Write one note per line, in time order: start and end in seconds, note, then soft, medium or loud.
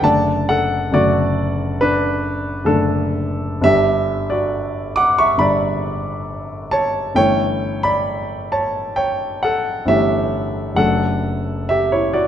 0.02 0.90 F#1 medium
0.02 0.90 D3 soft
0.02 0.91 A3 soft
0.02 0.91 D4 soft
0.02 0.46 D5 medium
0.02 0.49 A5 loud
0.49 0.91 A4 medium
0.49 0.94 F#5 medium
0.92 2.62 F#1 medium
0.92 2.62 D3 soft
0.92 2.63 A3 soft
0.92 1.81 D4 soft
0.92 1.78 F#4 medium
0.92 1.82 D5 medium
1.81 2.63 D4 medium
1.81 2.66 B4 loud
2.64 3.59 F#1 medium
2.64 3.60 D3 medium
2.64 3.60 A3 medium
2.64 3.60 D4 medium
2.64 3.63 A4 medium
3.61 5.34 G1 medium
3.61 5.34 D3 soft
3.61 5.35 G3 medium
3.61 5.36 D4 soft
3.61 4.28 G4 medium
3.61 4.31 E5 loud
4.30 4.92 F#4 medium
4.30 4.95 D5 medium
4.96 5.17 F#5 medium
4.96 5.17 D6 loud
5.18 5.38 E5 medium
5.18 5.39 C#6 loud
5.37 7.12 G1 medium
5.37 7.12 D3 soft
5.37 7.13 G3 soft
5.37 7.13 D4 soft
5.37 6.68 D5 medium
5.37 6.71 B5 medium
6.71 7.14 C#5 medium
6.71 7.17 A5 loud
7.15 9.83 G1 medium
7.15 9.83 E3 medium
7.15 9.84 A3 soft
7.15 9.84 C#4 soft
7.15 7.81 C#5 medium
7.15 7.84 G5 loud
7.83 8.48 D5 medium
7.83 8.51 B5 loud
8.52 8.94 C#5 medium
8.52 8.97 A5 medium
8.96 9.39 C#5 medium
8.96 9.42 G5 medium
9.43 9.86 A4 medium
9.43 9.88 F#5 medium
9.86 10.75 G1 medium
9.86 10.75 E3 soft
9.86 10.75 A3 medium
9.86 10.76 C#4 soft
9.86 10.75 G4 medium
9.86 10.79 E5 loud
10.75 12.28 F#1 medium
10.75 12.28 F#3 soft
10.75 12.28 A3 soft
10.75 12.28 D4 soft
10.75 11.66 A4 medium
10.75 11.69 F#5 loud
11.69 11.91 G4 medium
11.69 11.92 E5 medium
11.92 12.14 E4 medium
11.92 12.15 C#5 medium
12.13 12.28 F#4 medium
12.13 12.28 D5 medium